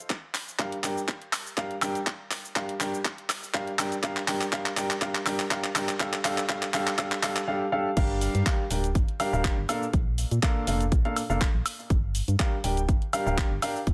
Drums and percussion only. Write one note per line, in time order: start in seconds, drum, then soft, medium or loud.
0.10 kick loud
0.10 clap medium
0.10 closed hi-hat medium
0.10 cabasa soft
0.34 clap medium
0.34 open hi-hat loud
0.34 cabasa medium
0.48 cabasa soft
0.59 kick loud
0.59 clap medium
0.59 closed hi-hat medium
0.59 cabasa soft
0.72 closed hi-hat medium
0.84 clap medium
0.84 open hi-hat medium
0.84 cabasa medium
0.98 cabasa soft
1.08 kick loud
1.08 clap medium
1.08 closed hi-hat medium
1.08 cabasa soft
1.22 closed hi-hat soft
1.33 clap medium
1.33 open hi-hat loud
1.33 cabasa medium
1.33 high woodblock medium
1.47 cabasa soft
1.57 kick loud
1.57 clap medium
1.57 closed hi-hat medium
1.57 cabasa soft
1.71 closed hi-hat soft
1.82 clap medium
1.82 open hi-hat medium
1.82 cabasa medium
1.82 high woodblock medium
1.95 closed hi-hat soft
1.95 cabasa soft
2.07 kick loud
2.07 clap medium
2.07 closed hi-hat medium
2.07 cabasa soft
2.31 clap medium
2.31 open hi-hat loud
2.31 cabasa medium
2.45 cabasa soft
2.56 kick loud
2.56 clap medium
2.56 closed hi-hat medium
2.56 cabasa soft
2.69 closed hi-hat medium
2.80 clap medium
2.80 open hi-hat medium
2.80 cabasa medium
2.94 cabasa soft
3.05 kick loud
3.05 clap medium
3.05 closed hi-hat medium
3.05 cabasa soft
3.18 closed hi-hat soft
3.30 clap medium
3.30 open hi-hat loud
3.30 cabasa medium
3.30 high woodblock medium
3.43 cabasa soft
3.54 kick loud
3.54 clap medium
3.54 closed hi-hat medium
3.54 cabasa soft
3.67 closed hi-hat soft
3.79 clap medium
3.79 open hi-hat medium
3.79 cabasa medium
3.79 high woodblock medium
3.92 closed hi-hat medium
3.92 cabasa soft
4.03 kick loud
4.03 clap medium
4.03 closed hi-hat medium
4.03 cabasa soft
4.17 clap medium
4.28 clap loud
4.28 open hi-hat loud
4.28 cabasa medium
4.41 clap medium
4.41 cabasa soft
4.53 kick loud
4.53 clap medium
4.53 closed hi-hat medium
4.53 cabasa soft
4.66 clap medium
4.66 closed hi-hat medium
4.77 clap loud
4.77 open hi-hat medium
4.77 cabasa medium
4.90 clap medium
4.90 cabasa soft
5.02 kick loud
5.02 clap medium
5.02 closed hi-hat medium
5.02 cabasa soft
5.15 clap medium
5.15 closed hi-hat soft
5.26 clap medium
5.26 open hi-hat loud
5.26 cabasa medium
5.26 high woodblock medium
5.40 clap medium
5.40 cabasa soft
5.51 kick loud
5.51 clap loud
5.51 closed hi-hat medium
5.51 cabasa soft
5.64 clap medium
5.64 closed hi-hat soft
5.75 clap loud
5.75 open hi-hat medium
5.75 cabasa medium
5.75 high woodblock medium
5.89 clap medium
5.89 closed hi-hat medium
5.89 cabasa soft
6.00 kick loud
6.00 clap loud
6.00 closed hi-hat medium
6.00 cabasa soft
6.13 clap loud
6.13 closed hi-hat soft
6.25 clap loud
6.25 open hi-hat loud
6.25 cabasa medium
6.38 clap medium
6.38 closed hi-hat soft
6.38 cabasa soft
6.49 kick loud
6.49 clap loud
6.49 closed hi-hat medium
6.49 cabasa soft
6.63 clap medium
6.63 closed hi-hat medium
6.74 clap loud
6.74 open hi-hat medium
6.74 cabasa medium
6.87 clap medium
6.87 cabasa soft
6.98 kick loud
6.98 clap loud
6.98 closed hi-hat medium
6.98 cabasa soft
6.98 high woodblock medium
7.12 clap medium
7.12 closed hi-hat soft
7.23 kick medium
7.23 clap loud
7.23 open hi-hat loud
7.23 cabasa medium
7.23 high woodblock medium
7.36 clap loud
7.36 cabasa soft
7.97 kick loud
7.97 closed hi-hat medium
7.97 crash loud
7.97 cabasa soft
8.21 open hi-hat loud
8.21 cabasa medium
8.35 closed hi-hat medium
8.35 cabasa soft
8.46 kick loud
8.46 clap loud
8.46 closed hi-hat medium
8.46 cabasa soft
8.71 open hi-hat loud
8.71 cabasa medium
8.84 closed hi-hat medium
8.84 cabasa soft
8.95 kick loud
8.95 closed hi-hat medium
8.95 cabasa soft
9.08 closed hi-hat soft
9.20 open hi-hat loud
9.20 cabasa medium
9.20 high woodblock medium
9.34 cabasa soft
9.44 kick loud
9.44 clap loud
9.44 closed hi-hat medium
9.44 cabasa soft
9.69 open hi-hat loud
9.69 cabasa medium
9.69 high woodblock medium
9.83 cabasa soft
9.93 kick loud
9.93 closed hi-hat medium
9.93 cabasa soft
10.18 open hi-hat loud
10.18 cabasa medium
10.31 closed hi-hat medium
10.31 cabasa soft
10.43 kick loud
10.43 clap loud
10.43 closed hi-hat medium
10.43 cabasa soft
10.67 open hi-hat loud
10.67 cabasa medium
10.81 closed hi-hat medium
10.81 cabasa soft
10.92 kick loud
10.92 closed hi-hat medium
10.92 cabasa soft
11.05 closed hi-hat soft
11.16 open hi-hat loud
11.16 cabasa medium
11.16 high woodblock medium
11.30 cabasa soft
11.41 kick loud
11.41 clap loud
11.41 closed hi-hat medium
11.41 cabasa soft
11.66 open hi-hat loud
11.66 cabasa medium
11.66 high woodblock medium
11.79 cabasa soft
11.90 kick loud
11.90 closed hi-hat medium
11.90 cabasa soft
12.15 open hi-hat loud
12.15 cabasa medium
12.28 closed hi-hat medium
12.28 cabasa soft
12.39 kick loud
12.39 clap loud
12.39 closed hi-hat medium
12.39 cabasa soft
12.64 open hi-hat loud
12.64 cabasa medium
12.77 closed hi-hat medium
12.77 cabasa soft
12.89 kick loud
12.89 closed hi-hat medium
12.89 cabasa soft
13.02 closed hi-hat soft
13.13 open hi-hat loud
13.13 cabasa medium
13.13 high woodblock medium
13.27 cabasa soft
13.38 kick loud
13.38 clap loud
13.38 closed hi-hat medium
13.38 cabasa soft
13.62 open hi-hat loud
13.62 cabasa medium
13.62 high woodblock medium
13.76 cabasa soft
13.87 kick loud
13.87 closed hi-hat medium
13.87 cabasa soft